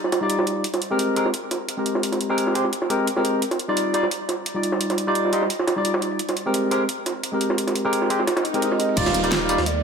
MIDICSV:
0, 0, Header, 1, 7, 480
1, 0, Start_track
1, 0, Key_signature, -3, "major"
1, 0, Tempo, 346821
1, 894, Time_signature, 4, 2, 24, 8
1, 13607, End_track
2, 0, Start_track
2, 0, Title_t, "Soft synth lead"
2, 0, Program_c, 0, 80
2, 11935, Note_on_c, 0, 75, 102
2, 12417, Note_on_c, 0, 77, 114
2, 12438, Note_off_c, 0, 75, 0
2, 12886, Note_off_c, 0, 77, 0
2, 12894, Note_on_c, 0, 77, 110
2, 13379, Note_on_c, 0, 74, 110
2, 13400, Note_off_c, 0, 77, 0
2, 13607, Note_off_c, 0, 74, 0
2, 13607, End_track
3, 0, Start_track
3, 0, Title_t, "Tine electric piano"
3, 0, Program_c, 1, 4
3, 285, Note_on_c, 1, 55, 82
3, 295, Note_on_c, 1, 63, 75
3, 306, Note_on_c, 1, 65, 75
3, 316, Note_on_c, 1, 74, 91
3, 872, Note_off_c, 1, 55, 0
3, 877, Note_off_c, 1, 63, 0
3, 882, Note_off_c, 1, 65, 0
3, 888, Note_off_c, 1, 74, 0
3, 1251, Note_on_c, 1, 56, 88
3, 1256, Note_on_c, 1, 60, 78
3, 1261, Note_on_c, 1, 67, 79
3, 1268, Note_on_c, 1, 70, 95
3, 1582, Note_off_c, 1, 56, 0
3, 1584, Note_off_c, 1, 60, 0
3, 1587, Note_off_c, 1, 67, 0
3, 1590, Note_off_c, 1, 70, 0
3, 1605, Note_on_c, 1, 56, 83
3, 1610, Note_on_c, 1, 60, 76
3, 1614, Note_on_c, 1, 67, 75
3, 1620, Note_on_c, 1, 70, 94
3, 1755, Note_off_c, 1, 56, 0
3, 1757, Note_off_c, 1, 60, 0
3, 1760, Note_off_c, 1, 67, 0
3, 1762, Note_off_c, 1, 70, 0
3, 2446, Note_on_c, 1, 56, 72
3, 2456, Note_on_c, 1, 60, 64
3, 2467, Note_on_c, 1, 67, 66
3, 2476, Note_on_c, 1, 70, 80
3, 3143, Note_off_c, 1, 56, 0
3, 3149, Note_off_c, 1, 60, 0
3, 3154, Note_off_c, 1, 67, 0
3, 3158, Note_off_c, 1, 70, 0
3, 3172, Note_on_c, 1, 56, 90
3, 3178, Note_on_c, 1, 60, 82
3, 3182, Note_on_c, 1, 67, 80
3, 3186, Note_on_c, 1, 70, 97
3, 3502, Note_off_c, 1, 56, 0
3, 3505, Note_off_c, 1, 60, 0
3, 3507, Note_off_c, 1, 67, 0
3, 3509, Note_off_c, 1, 70, 0
3, 3522, Note_on_c, 1, 56, 84
3, 3526, Note_on_c, 1, 60, 77
3, 3532, Note_on_c, 1, 67, 77
3, 3538, Note_on_c, 1, 72, 92
3, 3673, Note_off_c, 1, 56, 0
3, 3675, Note_off_c, 1, 60, 0
3, 3678, Note_off_c, 1, 67, 0
3, 3681, Note_off_c, 1, 72, 0
3, 4002, Note_on_c, 1, 56, 88
3, 4008, Note_on_c, 1, 60, 84
3, 4012, Note_on_c, 1, 67, 84
3, 4017, Note_on_c, 1, 70, 103
3, 4231, Note_off_c, 1, 56, 0
3, 4234, Note_off_c, 1, 60, 0
3, 4235, Note_off_c, 1, 67, 0
3, 4238, Note_off_c, 1, 70, 0
3, 4374, Note_on_c, 1, 56, 87
3, 4380, Note_on_c, 1, 60, 80
3, 4384, Note_on_c, 1, 67, 80
3, 4390, Note_on_c, 1, 70, 99
3, 4717, Note_off_c, 1, 56, 0
3, 4719, Note_off_c, 1, 60, 0
3, 4721, Note_off_c, 1, 67, 0
3, 4725, Note_off_c, 1, 70, 0
3, 5093, Note_on_c, 1, 55, 85
3, 5099, Note_on_c, 1, 63, 80
3, 5104, Note_on_c, 1, 65, 80
3, 5108, Note_on_c, 1, 74, 97
3, 5423, Note_off_c, 1, 55, 0
3, 5426, Note_off_c, 1, 63, 0
3, 5428, Note_off_c, 1, 65, 0
3, 5430, Note_off_c, 1, 74, 0
3, 5444, Note_on_c, 1, 55, 80
3, 5450, Note_on_c, 1, 63, 74
3, 5455, Note_on_c, 1, 65, 73
3, 5461, Note_on_c, 1, 74, 90
3, 5594, Note_off_c, 1, 55, 0
3, 5597, Note_off_c, 1, 63, 0
3, 5600, Note_off_c, 1, 65, 0
3, 5603, Note_off_c, 1, 74, 0
3, 6284, Note_on_c, 1, 55, 73
3, 6297, Note_on_c, 1, 63, 68
3, 6306, Note_on_c, 1, 65, 65
3, 6316, Note_on_c, 1, 74, 80
3, 6983, Note_off_c, 1, 55, 0
3, 6989, Note_off_c, 1, 63, 0
3, 6993, Note_off_c, 1, 65, 0
3, 6998, Note_off_c, 1, 74, 0
3, 7016, Note_on_c, 1, 55, 86
3, 7021, Note_on_c, 1, 63, 84
3, 7026, Note_on_c, 1, 65, 80
3, 7030, Note_on_c, 1, 74, 97
3, 7344, Note_off_c, 1, 55, 0
3, 7347, Note_off_c, 1, 63, 0
3, 7349, Note_off_c, 1, 65, 0
3, 7351, Note_off_c, 1, 74, 0
3, 7368, Note_on_c, 1, 55, 89
3, 7374, Note_on_c, 1, 63, 78
3, 7379, Note_on_c, 1, 65, 78
3, 7385, Note_on_c, 1, 75, 98
3, 7517, Note_off_c, 1, 55, 0
3, 7520, Note_off_c, 1, 63, 0
3, 7522, Note_off_c, 1, 65, 0
3, 7525, Note_off_c, 1, 75, 0
3, 7967, Note_on_c, 1, 55, 80
3, 7977, Note_on_c, 1, 63, 75
3, 7988, Note_on_c, 1, 65, 72
3, 7999, Note_on_c, 1, 74, 89
3, 8553, Note_off_c, 1, 55, 0
3, 8558, Note_off_c, 1, 63, 0
3, 8563, Note_off_c, 1, 65, 0
3, 8569, Note_off_c, 1, 74, 0
3, 8935, Note_on_c, 1, 56, 86
3, 8941, Note_on_c, 1, 60, 79
3, 8946, Note_on_c, 1, 67, 78
3, 8951, Note_on_c, 1, 70, 97
3, 9264, Note_off_c, 1, 56, 0
3, 9267, Note_off_c, 1, 60, 0
3, 9269, Note_off_c, 1, 67, 0
3, 9272, Note_off_c, 1, 70, 0
3, 9284, Note_on_c, 1, 56, 80
3, 9290, Note_on_c, 1, 60, 74
3, 9295, Note_on_c, 1, 67, 77
3, 9300, Note_on_c, 1, 70, 89
3, 9434, Note_off_c, 1, 56, 0
3, 9437, Note_off_c, 1, 60, 0
3, 9440, Note_off_c, 1, 67, 0
3, 9442, Note_off_c, 1, 70, 0
3, 10127, Note_on_c, 1, 56, 75
3, 10138, Note_on_c, 1, 60, 66
3, 10148, Note_on_c, 1, 67, 68
3, 10160, Note_on_c, 1, 70, 81
3, 10824, Note_off_c, 1, 56, 0
3, 10830, Note_off_c, 1, 60, 0
3, 10834, Note_off_c, 1, 67, 0
3, 10840, Note_off_c, 1, 70, 0
3, 10855, Note_on_c, 1, 56, 90
3, 10859, Note_on_c, 1, 60, 82
3, 10866, Note_on_c, 1, 67, 82
3, 10870, Note_on_c, 1, 70, 101
3, 11183, Note_off_c, 1, 56, 0
3, 11186, Note_off_c, 1, 60, 0
3, 11189, Note_off_c, 1, 67, 0
3, 11191, Note_off_c, 1, 70, 0
3, 11206, Note_on_c, 1, 56, 87
3, 11212, Note_on_c, 1, 60, 83
3, 11216, Note_on_c, 1, 67, 80
3, 11221, Note_on_c, 1, 72, 94
3, 11355, Note_off_c, 1, 56, 0
3, 11358, Note_off_c, 1, 60, 0
3, 11360, Note_off_c, 1, 67, 0
3, 11363, Note_off_c, 1, 72, 0
3, 11807, Note_on_c, 1, 56, 83
3, 11818, Note_on_c, 1, 60, 75
3, 11828, Note_on_c, 1, 67, 76
3, 11838, Note_on_c, 1, 70, 90
3, 12393, Note_off_c, 1, 56, 0
3, 12399, Note_off_c, 1, 60, 0
3, 12404, Note_off_c, 1, 67, 0
3, 12405, Note_on_c, 1, 55, 98
3, 12408, Note_off_c, 1, 70, 0
3, 12411, Note_on_c, 1, 63, 91
3, 12414, Note_on_c, 1, 65, 89
3, 12419, Note_on_c, 1, 74, 111
3, 12726, Note_off_c, 1, 55, 0
3, 12729, Note_off_c, 1, 63, 0
3, 12731, Note_off_c, 1, 65, 0
3, 12734, Note_off_c, 1, 74, 0
3, 12775, Note_on_c, 1, 55, 93
3, 12779, Note_on_c, 1, 63, 86
3, 12785, Note_on_c, 1, 65, 86
3, 12791, Note_on_c, 1, 74, 105
3, 13103, Note_off_c, 1, 55, 0
3, 13106, Note_off_c, 1, 63, 0
3, 13109, Note_off_c, 1, 65, 0
3, 13112, Note_off_c, 1, 74, 0
3, 13129, Note_on_c, 1, 55, 88
3, 13134, Note_on_c, 1, 63, 81
3, 13140, Note_on_c, 1, 65, 81
3, 13143, Note_on_c, 1, 74, 98
3, 13277, Note_off_c, 1, 55, 0
3, 13279, Note_off_c, 1, 63, 0
3, 13282, Note_off_c, 1, 65, 0
3, 13284, Note_off_c, 1, 74, 0
3, 13607, End_track
4, 0, Start_track
4, 0, Title_t, "Detuned saw bass"
4, 0, Program_c, 2, 39
4, 12414, Note_on_c, 2, 27, 100
4, 13242, Note_off_c, 2, 27, 0
4, 13262, Note_on_c, 2, 39, 99
4, 13607, Note_off_c, 2, 39, 0
4, 13607, End_track
5, 0, Start_track
5, 0, Title_t, "Downlifter"
5, 0, Program_c, 3, 103
5, 12415, Note_on_c, 3, 60, 75
5, 13607, Note_off_c, 3, 60, 0
5, 13607, End_track
6, 0, Start_track
6, 0, Title_t, "Swell"
6, 0, Program_c, 4, 103
6, 11454, Note_on_c, 4, 60, 74
6, 12414, Note_off_c, 4, 60, 0
6, 13607, End_track
7, 0, Start_track
7, 0, Title_t, "Drums"
7, 58, Note_on_c, 9, 38, 52
7, 170, Note_on_c, 9, 42, 60
7, 171, Note_off_c, 9, 38, 0
7, 171, Note_off_c, 9, 42, 0
7, 171, Note_on_c, 9, 38, 100
7, 171, Note_on_c, 9, 42, 73
7, 309, Note_off_c, 9, 38, 0
7, 309, Note_off_c, 9, 42, 0
7, 409, Note_on_c, 9, 42, 88
7, 412, Note_off_c, 9, 42, 0
7, 412, Note_on_c, 9, 42, 55
7, 538, Note_off_c, 9, 42, 0
7, 538, Note_on_c, 9, 38, 99
7, 538, Note_on_c, 9, 42, 76
7, 650, Note_off_c, 9, 42, 0
7, 650, Note_on_c, 9, 42, 63
7, 677, Note_off_c, 9, 38, 0
7, 779, Note_off_c, 9, 42, 0
7, 779, Note_on_c, 9, 42, 58
7, 889, Note_off_c, 9, 42, 0
7, 889, Note_on_c, 9, 42, 88
7, 1019, Note_off_c, 9, 42, 0
7, 1019, Note_on_c, 9, 38, 50
7, 1019, Note_on_c, 9, 42, 34
7, 1130, Note_off_c, 9, 42, 0
7, 1130, Note_on_c, 9, 42, 62
7, 1131, Note_off_c, 9, 42, 0
7, 1131, Note_on_c, 9, 42, 62
7, 1158, Note_off_c, 9, 38, 0
7, 1270, Note_off_c, 9, 42, 0
7, 1370, Note_on_c, 9, 42, 82
7, 1371, Note_off_c, 9, 42, 0
7, 1371, Note_on_c, 9, 42, 85
7, 1510, Note_off_c, 9, 42, 0
7, 1611, Note_on_c, 9, 42, 58
7, 1738, Note_on_c, 9, 38, 47
7, 1750, Note_off_c, 9, 42, 0
7, 1851, Note_on_c, 9, 42, 84
7, 1876, Note_off_c, 9, 38, 0
7, 1990, Note_off_c, 9, 42, 0
7, 2091, Note_on_c, 9, 38, 38
7, 2091, Note_on_c, 9, 42, 56
7, 2229, Note_off_c, 9, 38, 0
7, 2230, Note_off_c, 9, 42, 0
7, 2331, Note_on_c, 9, 42, 79
7, 2333, Note_off_c, 9, 42, 0
7, 2333, Note_on_c, 9, 42, 86
7, 2471, Note_off_c, 9, 42, 0
7, 2569, Note_on_c, 9, 42, 66
7, 2572, Note_off_c, 9, 42, 0
7, 2572, Note_on_c, 9, 42, 62
7, 2700, Note_on_c, 9, 38, 51
7, 2711, Note_off_c, 9, 42, 0
7, 2811, Note_on_c, 9, 42, 83
7, 2813, Note_off_c, 9, 42, 0
7, 2813, Note_on_c, 9, 42, 87
7, 2839, Note_off_c, 9, 38, 0
7, 2938, Note_on_c, 9, 38, 40
7, 2942, Note_off_c, 9, 42, 0
7, 2942, Note_on_c, 9, 42, 33
7, 3053, Note_off_c, 9, 42, 0
7, 3053, Note_on_c, 9, 42, 58
7, 3076, Note_off_c, 9, 38, 0
7, 3192, Note_off_c, 9, 42, 0
7, 3289, Note_on_c, 9, 42, 80
7, 3292, Note_off_c, 9, 42, 0
7, 3292, Note_on_c, 9, 42, 87
7, 3419, Note_on_c, 9, 38, 39
7, 3431, Note_off_c, 9, 42, 0
7, 3531, Note_on_c, 9, 42, 62
7, 3534, Note_off_c, 9, 42, 0
7, 3534, Note_on_c, 9, 42, 59
7, 3557, Note_off_c, 9, 38, 0
7, 3659, Note_on_c, 9, 38, 36
7, 3672, Note_off_c, 9, 42, 0
7, 3770, Note_on_c, 9, 42, 81
7, 3775, Note_off_c, 9, 42, 0
7, 3775, Note_on_c, 9, 42, 83
7, 3798, Note_off_c, 9, 38, 0
7, 3899, Note_on_c, 9, 38, 53
7, 3913, Note_off_c, 9, 42, 0
7, 4011, Note_on_c, 9, 42, 67
7, 4016, Note_off_c, 9, 42, 0
7, 4016, Note_on_c, 9, 42, 55
7, 4037, Note_off_c, 9, 38, 0
7, 4139, Note_off_c, 9, 42, 0
7, 4139, Note_on_c, 9, 42, 41
7, 4248, Note_off_c, 9, 42, 0
7, 4248, Note_on_c, 9, 42, 79
7, 4255, Note_off_c, 9, 42, 0
7, 4255, Note_on_c, 9, 42, 83
7, 4379, Note_on_c, 9, 38, 45
7, 4393, Note_off_c, 9, 42, 0
7, 4492, Note_on_c, 9, 42, 65
7, 4494, Note_off_c, 9, 42, 0
7, 4494, Note_on_c, 9, 42, 60
7, 4518, Note_off_c, 9, 38, 0
7, 4632, Note_off_c, 9, 42, 0
7, 4730, Note_on_c, 9, 42, 84
7, 4735, Note_off_c, 9, 42, 0
7, 4735, Note_on_c, 9, 42, 86
7, 4860, Note_on_c, 9, 38, 53
7, 4863, Note_off_c, 9, 42, 0
7, 4863, Note_on_c, 9, 42, 34
7, 4970, Note_off_c, 9, 42, 0
7, 4970, Note_on_c, 9, 42, 60
7, 4975, Note_off_c, 9, 42, 0
7, 4975, Note_on_c, 9, 42, 60
7, 4998, Note_off_c, 9, 38, 0
7, 5113, Note_off_c, 9, 42, 0
7, 5212, Note_on_c, 9, 42, 82
7, 5215, Note_off_c, 9, 42, 0
7, 5215, Note_on_c, 9, 42, 83
7, 5354, Note_off_c, 9, 42, 0
7, 5452, Note_on_c, 9, 42, 62
7, 5454, Note_off_c, 9, 42, 0
7, 5454, Note_on_c, 9, 42, 57
7, 5580, Note_on_c, 9, 38, 48
7, 5593, Note_off_c, 9, 42, 0
7, 5691, Note_on_c, 9, 42, 84
7, 5694, Note_off_c, 9, 42, 0
7, 5694, Note_on_c, 9, 42, 82
7, 5718, Note_off_c, 9, 38, 0
7, 5832, Note_off_c, 9, 42, 0
7, 5933, Note_on_c, 9, 38, 37
7, 5933, Note_on_c, 9, 42, 64
7, 5936, Note_off_c, 9, 42, 0
7, 5936, Note_on_c, 9, 42, 56
7, 6071, Note_off_c, 9, 38, 0
7, 6074, Note_off_c, 9, 42, 0
7, 6172, Note_on_c, 9, 42, 80
7, 6174, Note_off_c, 9, 42, 0
7, 6174, Note_on_c, 9, 42, 86
7, 6313, Note_off_c, 9, 42, 0
7, 6411, Note_on_c, 9, 42, 62
7, 6414, Note_off_c, 9, 42, 0
7, 6414, Note_on_c, 9, 42, 59
7, 6537, Note_on_c, 9, 38, 50
7, 6552, Note_off_c, 9, 42, 0
7, 6651, Note_on_c, 9, 42, 86
7, 6652, Note_off_c, 9, 42, 0
7, 6652, Note_on_c, 9, 42, 89
7, 6675, Note_off_c, 9, 38, 0
7, 6781, Note_off_c, 9, 42, 0
7, 6781, Note_on_c, 9, 38, 41
7, 6781, Note_on_c, 9, 42, 34
7, 6892, Note_off_c, 9, 42, 0
7, 6892, Note_on_c, 9, 42, 60
7, 6894, Note_off_c, 9, 42, 0
7, 6894, Note_on_c, 9, 42, 61
7, 6920, Note_off_c, 9, 38, 0
7, 7032, Note_off_c, 9, 42, 0
7, 7132, Note_on_c, 9, 42, 89
7, 7133, Note_off_c, 9, 42, 0
7, 7133, Note_on_c, 9, 42, 82
7, 7263, Note_on_c, 9, 38, 37
7, 7271, Note_off_c, 9, 42, 0
7, 7372, Note_on_c, 9, 42, 65
7, 7373, Note_off_c, 9, 42, 0
7, 7373, Note_on_c, 9, 42, 61
7, 7401, Note_off_c, 9, 38, 0
7, 7501, Note_on_c, 9, 38, 37
7, 7511, Note_off_c, 9, 42, 0
7, 7612, Note_on_c, 9, 42, 83
7, 7613, Note_off_c, 9, 42, 0
7, 7613, Note_on_c, 9, 42, 89
7, 7640, Note_off_c, 9, 38, 0
7, 7742, Note_on_c, 9, 38, 53
7, 7751, Note_off_c, 9, 42, 0
7, 7853, Note_off_c, 9, 38, 0
7, 7853, Note_on_c, 9, 38, 97
7, 7853, Note_on_c, 9, 42, 76
7, 7855, Note_off_c, 9, 42, 0
7, 7855, Note_on_c, 9, 42, 60
7, 7991, Note_off_c, 9, 38, 0
7, 7993, Note_off_c, 9, 42, 0
7, 8094, Note_on_c, 9, 42, 88
7, 8222, Note_off_c, 9, 42, 0
7, 8222, Note_on_c, 9, 38, 101
7, 8222, Note_on_c, 9, 42, 77
7, 8333, Note_off_c, 9, 42, 0
7, 8333, Note_on_c, 9, 42, 60
7, 8360, Note_off_c, 9, 38, 0
7, 8464, Note_off_c, 9, 42, 0
7, 8464, Note_on_c, 9, 42, 61
7, 8572, Note_off_c, 9, 42, 0
7, 8572, Note_on_c, 9, 42, 93
7, 8573, Note_off_c, 9, 42, 0
7, 8573, Note_on_c, 9, 42, 82
7, 8700, Note_off_c, 9, 42, 0
7, 8700, Note_on_c, 9, 42, 37
7, 8703, Note_on_c, 9, 38, 52
7, 8811, Note_off_c, 9, 42, 0
7, 8811, Note_on_c, 9, 42, 64
7, 8814, Note_off_c, 9, 42, 0
7, 8814, Note_on_c, 9, 42, 61
7, 8841, Note_off_c, 9, 38, 0
7, 8953, Note_off_c, 9, 42, 0
7, 9052, Note_on_c, 9, 42, 91
7, 9054, Note_off_c, 9, 42, 0
7, 9054, Note_on_c, 9, 42, 82
7, 9193, Note_off_c, 9, 42, 0
7, 9292, Note_on_c, 9, 42, 64
7, 9431, Note_off_c, 9, 42, 0
7, 9534, Note_on_c, 9, 42, 90
7, 9535, Note_off_c, 9, 42, 0
7, 9535, Note_on_c, 9, 42, 83
7, 9674, Note_off_c, 9, 42, 0
7, 9772, Note_on_c, 9, 38, 37
7, 9772, Note_on_c, 9, 42, 64
7, 9773, Note_off_c, 9, 42, 0
7, 9773, Note_on_c, 9, 42, 60
7, 9910, Note_off_c, 9, 38, 0
7, 9911, Note_off_c, 9, 42, 0
7, 10010, Note_on_c, 9, 42, 83
7, 10013, Note_off_c, 9, 42, 0
7, 10013, Note_on_c, 9, 42, 89
7, 10152, Note_off_c, 9, 42, 0
7, 10252, Note_on_c, 9, 42, 67
7, 10253, Note_off_c, 9, 42, 0
7, 10253, Note_on_c, 9, 42, 65
7, 10379, Note_on_c, 9, 38, 51
7, 10391, Note_off_c, 9, 42, 0
7, 10489, Note_on_c, 9, 42, 84
7, 10493, Note_off_c, 9, 42, 0
7, 10493, Note_on_c, 9, 42, 93
7, 10517, Note_off_c, 9, 38, 0
7, 10619, Note_on_c, 9, 38, 42
7, 10624, Note_off_c, 9, 42, 0
7, 10624, Note_on_c, 9, 42, 38
7, 10729, Note_off_c, 9, 42, 0
7, 10729, Note_on_c, 9, 42, 65
7, 10733, Note_off_c, 9, 42, 0
7, 10733, Note_on_c, 9, 42, 65
7, 10758, Note_off_c, 9, 38, 0
7, 10872, Note_off_c, 9, 42, 0
7, 10968, Note_on_c, 9, 42, 80
7, 10973, Note_off_c, 9, 42, 0
7, 10973, Note_on_c, 9, 42, 94
7, 11098, Note_on_c, 9, 38, 38
7, 11112, Note_off_c, 9, 42, 0
7, 11211, Note_on_c, 9, 42, 77
7, 11214, Note_off_c, 9, 42, 0
7, 11214, Note_on_c, 9, 42, 67
7, 11237, Note_off_c, 9, 38, 0
7, 11339, Note_on_c, 9, 38, 45
7, 11352, Note_off_c, 9, 42, 0
7, 11451, Note_off_c, 9, 38, 0
7, 11451, Note_on_c, 9, 38, 98
7, 11451, Note_on_c, 9, 42, 76
7, 11452, Note_off_c, 9, 42, 0
7, 11452, Note_on_c, 9, 42, 94
7, 11577, Note_off_c, 9, 38, 0
7, 11577, Note_off_c, 9, 42, 0
7, 11577, Note_on_c, 9, 38, 97
7, 11577, Note_on_c, 9, 42, 73
7, 11582, Note_off_c, 9, 42, 0
7, 11582, Note_on_c, 9, 42, 38
7, 11691, Note_off_c, 9, 42, 0
7, 11691, Note_on_c, 9, 42, 65
7, 11693, Note_off_c, 9, 42, 0
7, 11693, Note_on_c, 9, 42, 63
7, 11716, Note_off_c, 9, 38, 0
7, 11820, Note_off_c, 9, 42, 0
7, 11820, Note_on_c, 9, 42, 42
7, 11822, Note_off_c, 9, 42, 0
7, 11822, Note_on_c, 9, 42, 37
7, 11931, Note_off_c, 9, 42, 0
7, 11931, Note_on_c, 9, 42, 75
7, 11934, Note_off_c, 9, 42, 0
7, 11934, Note_on_c, 9, 42, 91
7, 12063, Note_on_c, 9, 38, 47
7, 12072, Note_off_c, 9, 42, 0
7, 12172, Note_on_c, 9, 42, 58
7, 12174, Note_off_c, 9, 42, 0
7, 12174, Note_on_c, 9, 42, 65
7, 12201, Note_off_c, 9, 38, 0
7, 12303, Note_off_c, 9, 42, 0
7, 12303, Note_on_c, 9, 42, 75
7, 12412, Note_off_c, 9, 42, 0
7, 12412, Note_on_c, 9, 42, 103
7, 12412, Note_on_c, 9, 49, 109
7, 12413, Note_on_c, 9, 36, 119
7, 12415, Note_off_c, 9, 42, 0
7, 12415, Note_on_c, 9, 42, 89
7, 12542, Note_on_c, 9, 38, 54
7, 12544, Note_on_c, 9, 40, 52
7, 12544, Note_on_c, 9, 54, 28
7, 12551, Note_off_c, 9, 36, 0
7, 12551, Note_off_c, 9, 49, 0
7, 12553, Note_off_c, 9, 42, 0
7, 12654, Note_off_c, 9, 54, 0
7, 12654, Note_on_c, 9, 42, 72
7, 12654, Note_on_c, 9, 54, 61
7, 12657, Note_off_c, 9, 42, 0
7, 12657, Note_on_c, 9, 42, 70
7, 12681, Note_off_c, 9, 38, 0
7, 12682, Note_off_c, 9, 40, 0
7, 12784, Note_off_c, 9, 42, 0
7, 12784, Note_on_c, 9, 42, 40
7, 12792, Note_off_c, 9, 54, 0
7, 12893, Note_off_c, 9, 42, 0
7, 12893, Note_on_c, 9, 38, 123
7, 12893, Note_on_c, 9, 42, 101
7, 12895, Note_off_c, 9, 38, 0
7, 12895, Note_off_c, 9, 42, 0
7, 12895, Note_on_c, 9, 38, 117
7, 12895, Note_on_c, 9, 42, 88
7, 13033, Note_off_c, 9, 38, 0
7, 13033, Note_off_c, 9, 42, 0
7, 13135, Note_on_c, 9, 42, 69
7, 13135, Note_on_c, 9, 54, 58
7, 13136, Note_off_c, 9, 42, 0
7, 13136, Note_on_c, 9, 42, 69
7, 13263, Note_on_c, 9, 38, 51
7, 13274, Note_off_c, 9, 42, 0
7, 13274, Note_off_c, 9, 54, 0
7, 13374, Note_on_c, 9, 42, 100
7, 13375, Note_off_c, 9, 42, 0
7, 13375, Note_on_c, 9, 42, 92
7, 13402, Note_off_c, 9, 38, 0
7, 13513, Note_off_c, 9, 42, 0
7, 13607, End_track
0, 0, End_of_file